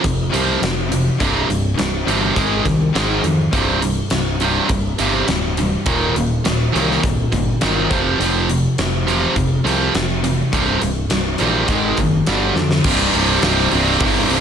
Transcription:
0.03 F1 F2 C3, kick, closed hi-hat
0.32 C2 F2 C3 F3, closed hi-hat
0.62 F1 F2 C3, snare, closed hi-hat
0.92 F2 C3, closed hi-hat
1.20 C1 C2 G2 C3, kick, closed hi-hat
1.49 C1 C2 G2, closed hi-hat
1.78 C1 C2 G2, snare, closed hi-hat
2.07 G1 C2 G2 C3, closed hi-hat
2.36 G#1 G#2 D#3 G#3, kick, closed hi-hat
2.65 C2 G#2 D#3, kick, snare, closed hi-hat
2.95 G#1 G#2 D#3 G#3, snare, closed hi-hat
3.24 F2 G#2 D#3, closed hi-hat
3.53 C1 C2 G2 C3, kick, closed hi-hat
3.82 C2 G2, closed hi-hat
4.10 C1 C2 G2, snare, closed hi-hat
4.40 C2 G2 C3, closed hi-hat
4.69 C1 C2 G2, kick, closed hi-hat
4.98 G1 C2 G2 C3, snare, closed hi-hat
5.27 D1 C2 G2, snare, closed hi-hat
5.57 C2 G2, closed hi-hat
5.86 D#1 D#2 A#2 D#3, kick, closed hi-hat
6.15 D#1 D#2 A#2, closed hi-hat
6.44 D#1 D#2 A#2, snare, closed hi-hat
6.72 C2 D#2 A#2 D#3, closed hi-hat
6.91 snare
7.03 C1 D#2 A#2, kick, closed hi-hat
7.32 G1 D#2 A#2, kick, closed hi-hat
7.61 G1 D#2 A#2 D#3, snare, closed hi-hat
7.90 F1 F2 C3 F3, kick, closed hi-hat
8.19 F1 F2 C3 F3, closed hi-hat
8.49 F2 C3, closed hi-hat
8.78 F1 F2 C3, snare, closed hi-hat
9.07 F2 C3 F3, closed hi-hat
9.36 F1 F2 C3, kick, closed hi-hat
9.64 C2 F2 C3 F3, snare, closed hi-hat
9.94 F1 F2 C3, snare, closed hi-hat
10.24 F2 C3, closed hi-hat
10.53 C1 C2 G2 C3, kick, closed hi-hat
10.82 C1 C2 G2, closed hi-hat
11.10 C1 C2 G2, snare, closed hi-hat
11.38 A#1 C2 G2 C3, closed hi-hat
11.68 G#1 G#2 D#3 G#3, kick, closed hi-hat
11.97 F#1 G#2 D#3, kick, closed hi-hat
12.26 G1 G2 D3 G3, snare, closed hi-hat
12.56 F2 G2 D3, snare
12.71 snare
12.84 C1 C2 G2 C3, kick, crash
13.13 C1 C2 G2 C3, open hi-hat
13.42 C1 C2 G2 C3, snare, open hi-hat
13.72 C1 C2 G2 C3, open hi-hat
14.00 G1 C2 G2 C3, kick, open hi-hat
14.29 C1 C2 G2 C3, open hi-hat

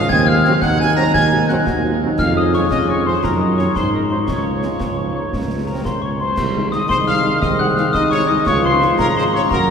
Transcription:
Already playing: F5
0.09 D#2 C4 G#5 G#6, concert bass drum, snare, crash
0.27 G#3 C4 F#4 F5 F6
0.45 F#3 G#3 C4 F#4, snare
0.62 D#2 D#4 F#5 F#6, concert bass drum, snare
0.78 G#3 C4 F#4 G#5 G#6
0.96 F#3 G#3 C4 F#4 A#5 A#6
1.14 D#2 G#5 G#6, concert bass drum, snare
1.32 G#3 C4 F#4
1.49 F#3 G#3 C4 F#4 F#5 F#6, snare
1.67 D#2 F#4, concert bass drum, snare
1.84 G#3 C4 F4 F#4
2.02 F#3 G#3 C4 D#4 F#4
2.19 F2 G#3 C#4 F4 F5 F6, concert bass drum, snare, crash
2.36 D#5 D#6
2.53 F3 C#4 C#5 C#6, snare
2.71 F2 C#4 D#5 D#6, concert bass drum, snare
2.89 C#5 C#6
3.06 F3 C#4 C5 C6
3.23 F#2 F#3 C#4 D#4 A#4 A#5, concert bass drum, snare
3.40 D#5 D#6
3.58 D#3 C#4 C#5 C#6, snare
3.76 G#2 F#3 G#3 D#4 C5 C6, concert bass drum, snare
3.92 A#4 A#5
4.10 F#3 D#4 C5 C6
4.28 C#2 F3 G#3 C#4 F4 C#5 C#6, concert bass drum, snare, crash
4.63 F3 C#4, snare
4.80 C#2 G#3, concert bass drum, snare
4.98 F3
5.17 A#3
5.33 C#2, concert bass drum, snare
5.51 G#3
5.67 C4 A#4 A#5
5.85 C#2 A#3 C5 C6, concert bass drum, snare
6.02 G#3 C#5 C#6
6.20 F#3 C5 C6
6.37 C2 D#3 G#3, concert bass drum, snare, crash
6.56 G#3 D#4
6.72 G#3 D#4 D#5 D#6, snare
6.89 C2 D#4 C5 C6, concert bass drum, snare
7.07 G#3 D#4 F5 F6
7.25 G#3 D#4
7.42 C2 C4 D#5 D#6, concert bass drum, snare
7.59 G#3 D#4 F#5 F#6
7.77 G#3 D#4 F5 F6, snare
7.93 C2 D#4 D#5 D#6, concert bass drum, snare
8.11 G#3 D#4 C#5 C#6
8.28 G#3 D#4 D#5 D#6
8.46 C#2 F3 G#3 F4 C#5 C#6, concert bass drum, snare, crash
8.64 G#3 C#4 F4 C5 C6
8.81 G#3 C#4 F4, snare
8.99 G#1 A#4 A#5, concert bass drum, snare
9.16 G#3 C#4 F4 C5 C6
9.34 G#3 C#4 F4 C#5 C#6
9.51 F#2 F#3 A#3 F#4 A#4 A#5, concert bass drum, snare

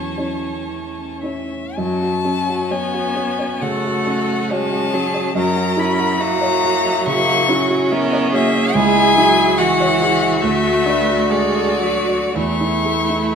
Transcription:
Already playing: E2 F#3 C#4 E4 C#5 A5
0.18 C#4 E4 C#5
0.67 E3
1.22 C#4 E4 C#5 E5
1.76 F#2 F#3 C#4 A5
2.02 F#4
2.25 F#3 C#4
2.49 F#4
2.70 B3 C#5 G#5
2.94 F#4
3.16 C#4
3.39 C#5
3.61 C#3 A3 F#4 A4 F#5
3.84 F#4
4.07 C#4
4.28 F#4
4.50 G#3 C#4 F#4 C#5 A5
4.72 F#4
4.94 F#3 C#4 G#4
5.14 C#5
5.35 F#2 F#3 C#4 A#4 A#5
5.56 F#4
5.77 E4 B5
5.98 F#4
6.19 A#3 F#4 E5 A#5
6.41 C#5
6.63 F#4
6.86 E5
7.05 C#3 A#3 E4 C#6
7.27 F#4
7.48 C#4 E4 F#4
7.70 F#4
7.91 B3 A#4 E5
8.13 C#5
8.32 A#3 F#4 G#4 E5
8.55 E5
8.74 C#2 G#3 E4 G#5
8.97 G#4
9.16 F#3 E4
9.58 E3 F#4 E5 F#5
9.80 C#5
10.01 E4 G#4
10.22 E5
10.41 D2 A3 F#4 E5
10.63 F#4
10.85 D4 B4
11.09 F#4
11.30 G#3 A4 D5
11.56 A4
11.81 F#3 F#4
12.08 D5
12.35 E2 A3 E4 C#6
12.61 E4
12.85 A3
13.10 E4

